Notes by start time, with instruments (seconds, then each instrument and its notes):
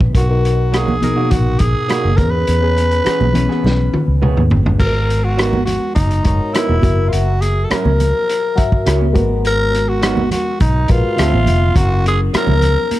Already playing: reed electric piano C#3 C#4 E4 B4
0.01 fingered electric bass A#1, kick
0.13 fingered electric bass B1, reed electric piano B2 B3 D#4 A#4, tenor saxophone F#4, kick, closed hi-hat
0.28 reed electric piano B2 B3 D#4 A#4
0.45 closed hi-hat
0.72 clean electric guitar F#3 A#3 D#4 F#4, tenor saxophone G#4, cross-stick, closed hi-hat
0.88 high conga, low conga
1.02 reed electric piano B2 B3 D#4 A#4, closed hi-hat, low conga
1.16 clean electric guitar F#3 A#3 D#4 F#4
1.31 fingered electric bass A#1, tenor saxophone F#4, kick, closed hi-hat
1.59 fingered electric bass A#1, tenor saxophone G#4, kick, closed hi-hat
1.88 clean electric guitar F#3 A#3 D#4 F#4, cross-stick, closed hi-hat, muted conga
2.05 fingered electric bass F#1, high conga
2.16 fingered electric bass E2, reed electric piano E3 B3 C#4 G#4, tenor saxophone A#4, kick, closed hi-hat, high conga
2.31 tenor saxophone B4
2.47 fingered electric bass E2, closed hi-hat
2.61 reed electric piano E3 B3 C#4 G#4
2.77 closed hi-hat, muted conga
2.91 closed hi-hat
3.05 clean electric guitar E3 B3 C#4 G#4, muted fingered electric bass stroke, cross-stick, closed hi-hat, muted conga
3.21 fingered electric bass B1, high conga, low conga
3.33 reed electric piano E3 B3 C#4 B4, closed hi-hat, low conga
3.49 clean electric guitar E3 B3 C#4 G#4, cross-stick
3.64 fingered electric bass B1, snare, muted conga
3.94 muted fingered electric bass stroke, high tom
4.08 fingered electric bass C#2
4.22 clean electric guitar E3 B3 C#4 G#4, mid tom
4.37 fingered electric bass D#2, mid tom, high conga
4.50 fingered electric bass G1, floor tom, muted conga, high conga
4.66 floor tom
4.78 fingered electric bass G#1, reed electric piano G#3 B3 F#4 A#4, tenor saxophone A#4, kick, crash
5.10 closed hi-hat
5.24 tenor saxophone F#4
5.37 clean electric guitar F#3 B3 D#4 A#4, cross-stick, closed hi-hat
5.53 high conga, low conga
5.66 tenor saxophone F#4, closed hi-hat, muted conga, low conga
5.95 fingered electric bass F#1, tenor saxophone D#4, kick, closed hi-hat, muted conga
6.11 closed hi-hat
6.23 fingered electric bass F#1, reed electric piano G#3 F#4 A#4 C#5, kick, closed hi-hat
6.53 clean electric guitar F#3 B3 D#4 A#4, tenor saxophone E4, cross-stick, closed hi-hat
6.69 fingered electric bass E1, high conga
6.82 fingered electric bass F#1, reed electric piano F#3 F#4 A#4 E5, kick, closed hi-hat, muted conga, high conga, low conga
7.08 tenor saxophone F4
7.13 fingered electric bass F#1, tenor saxophone F#4, closed hi-hat
7.41 tenor saxophone G#4, closed hi-hat, muted conga
7.65 tenor saxophone A4
7.70 clean electric guitar F#3 C#4 E4 A#4, tenor saxophone A#4, muted fingered electric bass stroke, cross-stick, closed hi-hat, muted conga
7.85 fingered electric bass C#2, high conga, low conga
8.00 closed hi-hat, muted conga, low conga
8.29 closed hi-hat
8.55 reed electric piano F#3 F#4 A#4 E5, kick, closed hi-hat
8.72 kick
8.86 fingered electric bass C#2, clean electric guitar F#3 C#4 E4 A#4, cross-stick, closed hi-hat, muted conga
9.02 high conga
9.13 fingered electric bass G#1, reed electric piano G#3 B3 F#4 A#4, kick, closed hi-hat, high conga, low conga
9.45 tenor saxophone A#4, closed hi-hat
9.74 closed hi-hat, muted conga
9.89 tenor saxophone F#4
10.02 clean electric guitar F#3 B3 D#4 A#4, cross-stick, closed hi-hat
10.17 high conga, low conga
10.31 tenor saxophone F#4, closed hi-hat, muted conga, low conga
10.60 fingered electric bass B1, tenor saxophone D#4, kick, closed hi-hat, muted conga
10.88 fingered electric bass A#1, reed electric piano G#3 F#4 A#4 B4, tenor saxophone F4, kick, closed hi-hat, muted conga
11.16 fingered electric bass D2, reed electric piano D3 C4 F4 E5, clean electric guitar F3 C4 E4 A4, cross-stick, closed hi-hat
11.33 fingered electric bass A1, high conga
11.46 fingered electric bass F1, closed hi-hat, high conga, low conga
11.74 fingered electric bass F#1, reed electric piano F#3 C#4 E4 A#4, tenor saxophone F#4, kick, closed hi-hat
12.05 tenor saxophone G#4, closed hi-hat, muted conga
12.34 clean electric guitar F#3 C#4 E4 A#4, tenor saxophone A#4, muted fingered electric bass stroke, cross-stick, closed hi-hat, muted conga
12.47 fingered electric bass C#2, high conga, low conga
12.62 closed hi-hat, low conga
12.91 closed hi-hat, high conga